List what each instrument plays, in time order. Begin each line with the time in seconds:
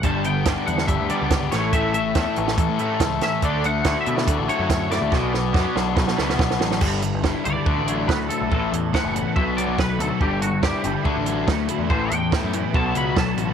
0.03 picked electric bass G1, distorted electric guitar G2, overdriven electric guitar G2 D3 G3, analog synth pad G4 D5 B5 D6, clean electric guitar A5, kick, closed hi-hat
0.24 overdriven electric guitar G2 D3, distorted electric guitar B3, clean electric guitar G5, closed hi-hat
0.45 picked electric bass G1, overdriven electric guitar G2 D3 G3, distorted electric guitar G4, kick, snare, closed hi-hat
0.66 picked electric bass E2, overdriven electric guitar G2 D3, distorted electric guitar D4, clean electric guitar F#5, closed hi-hat
0.78 snare
0.87 picked electric bass G1, overdriven electric guitar G2 D3, distorted electric guitar G4, clean electric guitar E5, kick, closed hi-hat
1.00 picked electric bass D2
1.09 overdriven electric guitar G2 D3 G3, distorted electric guitar B3, clean electric guitar D5, closed hi-hat
1.21 picked electric bass C#2
1.30 overdriven electric guitar G2 D3, distorted electric guitar G4, kick, snare, closed hi-hat
1.51 picked electric bass A1, distorted electric guitar A2, overdriven electric guitar A2 E3 A3, analog synth pad A4 C#5 E5 C#6, clean electric guitar C#5, snare, closed hi-hat
1.73 overdriven electric guitar A2 E3 A3, distorted electric guitar A2, clean electric guitar E5, kick, closed hi-hat
1.93 overdriven electric guitar A2 E3, distorted electric guitar A3, clean electric guitar E5, closed hi-hat
2.15 picked electric bass E2, overdriven electric guitar A2 E3 A3, distorted electric guitar A4, kick, snare, closed hi-hat
2.36 picked electric bass A1, overdriven electric guitar A2 E3, distorted electric guitar C#4, closed hi-hat
2.48 snare
2.58 picked electric bass A1, overdriven electric guitar A2 E3, distorted electric guitar A4, kick, closed hi-hat
2.69 picked electric bass A2
2.79 overdriven electric guitar A2 E3 A3, distorted electric guitar A3, closed hi-hat
3.00 picked electric bass C#2, overdriven electric guitar A2 E3, distorted electric guitar A4, kick, snare, closed hi-hat
3.21 overdriven electric guitar A2 E3, distorted electric guitar C#4, clean electric guitar E5, snare, closed hi-hat
3.42 picked electric bass D2, overdriven electric guitar D3 A3 D4, distorted electric guitar D3, analog synth pad A4 F#5 A5, clean electric guitar D5, kick, closed hi-hat
3.64 overdriven electric guitar D3 A3, distorted electric guitar A3, clean electric guitar F#5, closed hi-hat
3.84 picked electric bass D2, overdriven electric guitar D3 A3 D4, distorted electric guitar F#4, kick, snare, closed hi-hat
4.01 clean electric guitar E5
4.06 picked electric bass B2, overdriven electric guitar D3 A3, distorted electric guitar E4, closed hi-hat
4.15 clean electric guitar D5, snare
4.27 picked electric bass D2, overdriven electric guitar D3 A3, distorted electric guitar F#4, kick, closed hi-hat
4.38 picked electric bass A1
4.49 overdriven electric guitar D3 A3 D4, distorted electric guitar A3, clean electric guitar C#5, closed hi-hat
4.59 picked electric bass F#2
4.69 overdriven electric guitar D3 A3, distorted electric guitar F#4, kick, snare, closed hi-hat
4.90 overdriven electric guitar D3 A3, distorted electric guitar E4, clean electric guitar D5, snare, closed hi-hat
5.01 picked electric bass D2
5.11 picked electric bass B1, overdriven electric guitar B2 F#3 B3, distorted electric guitar B2, analog synth pad B4 D5 D6, kick, snare
5.33 overdriven electric guitar B2 F#3, distorted electric guitar B3, snare
5.53 picked electric bass F#2, overdriven electric guitar B2 F#3 B3, distorted electric guitar F#4, kick, snare
5.75 picked electric bass B1, overdriven electric guitar B2 F#3, distorted electric guitar D4, snare
5.96 picked electric bass B1, overdriven electric guitar B2 F#3, distorted electric guitar F#4, kick, snare
6.07 picked electric bass B2, snare
6.17 picked electric bass C#2, overdriven electric guitar B2 F#3 B3, distorted electric guitar B3, snare
6.30 snare
6.38 picked electric bass B1, overdriven electric guitar B2 F#3, distorted electric guitar F#4, kick, snare
6.51 snare
6.59 picked electric bass A1, overdriven electric guitar B2 F#3, distorted electric guitar D4, snare
6.71 snare
6.80 picked electric bass G1, distorted electric guitar G2 D3 G3, overdriven electric guitar G2, analog synth pad G3 D4 E4 A4 B4, kick, crash
7.02 distorted electric guitar G2 D3, closed hi-hat
7.14 picked electric bass G1
7.23 distorted electric guitar G2 D3 G3, overdriven electric guitar E4, kick, snare
7.44 picked electric bass C#2, distorted electric guitar G2 D3, overdriven electric guitar G3, clean electric guitar D5, closed hi-hat
7.65 picked electric bass D2, distorted electric guitar D3 A3 D4, analog synth pad D3 E4 F#4 A4, overdriven electric guitar D3, kick
7.78 picked electric bass A1
7.87 distorted electric guitar D3 A3 D4, overdriven electric guitar F#3, closed hi-hat
8.08 picked electric bass D2, distorted electric guitar D3 A3, overdriven electric guitar A3, clean electric guitar B4, kick, snare
8.29 distorted electric guitar D3 A3, overdriven electric guitar E4, clean electric guitar A4, closed hi-hat
8.41 picked electric bass B1
8.50 picked electric bass A1, distorted electric guitar A2 E3 A3, overdriven electric guitar A2, analog synth pad B3 C#4, clean electric guitar A4, kick
8.72 picked electric bass E2, distorted electric guitar A2 E3, closed hi-hat
8.93 distorted electric guitar A2 E3 A3, overdriven electric guitar E4, clean electric guitar F#5, kick, snare
9.04 picked electric bass F#1
9.15 distorted electric guitar A2 E3, overdriven electric guitar B3, closed hi-hat
9.36 picked electric bass B1, distorted electric guitar B2 F#3 B3, overdriven electric guitar B2, analog synth pad F#4 C#5 D5, clean electric guitar E5, kick
9.57 distorted electric guitar B2 F#3 B3, overdriven electric guitar F#3, clean electric guitar D5, closed hi-hat
9.67 picked electric bass B1
9.78 distorted electric guitar B2 F#3, overdriven electric guitar A3, clean electric guitar B4, kick, snare
9.99 picked electric bass D2, distorted electric guitar B2 F#3, overdriven electric guitar F#4, clean electric guitar A4, closed hi-hat
10.20 picked electric bass G1, distorted electric guitar G2 D3 G3, overdriven electric guitar G2, analog synth pad G3 D4 E4 A4 B4, clean electric guitar G4, kick
10.41 distorted electric guitar G2 D3, clean electric guitar F#4, closed hi-hat
10.52 picked electric bass G1
10.62 distorted electric guitar G2 D3 G3, overdriven electric guitar E4, clean electric guitar G4, kick, snare
10.84 picked electric bass G1, distorted electric guitar G2 D3, overdriven electric guitar G3, closed hi-hat
11.04 picked electric bass D2, distorted electric guitar D3 A3 D4, overdriven electric guitar D3, analog synth pad D3 F#4, kick
11.16 picked electric bass A1
11.25 distorted electric guitar D3 A3 D4, overdriven electric guitar F#3, closed hi-hat
11.47 picked electric bass D2, distorted electric guitar D3 A3, overdriven electric guitar A3, kick, snare
11.68 distorted electric guitar D3 A3, overdriven electric guitar E4, closed hi-hat
11.79 picked electric bass E2
11.89 picked electric bass A1, distorted electric guitar A2 E3 A3, overdriven electric guitar A2, analog synth pad B3 C#4, clean electric guitar C5, kick
12.11 picked electric bass E2, distorted electric guitar A2 E3, clean electric guitar G5, closed hi-hat
12.32 distorted electric guitar A2 E3 A3, overdriven electric guitar E4, kick, snare
12.43 picked electric bass F#2
12.53 distorted electric guitar A2 E3, overdriven electric guitar B3, closed hi-hat
12.74 picked electric bass B1, distorted electric guitar B2 F#3 B3, overdriven electric guitar B2, analog synth pad F#4 C#5 D5, clean electric guitar A5, kick
12.95 picked electric bass C#2, distorted electric guitar B2 F#3 B3, overdriven electric guitar F#3, clean electric guitar B5, closed hi-hat
13.16 picked electric bass B1, distorted electric guitar B2 F#3, overdriven electric guitar A3, clean electric guitar A5, kick, snare
13.37 picked electric bass A1, distorted electric guitar B2 F#3, overdriven electric guitar F#4, closed hi-hat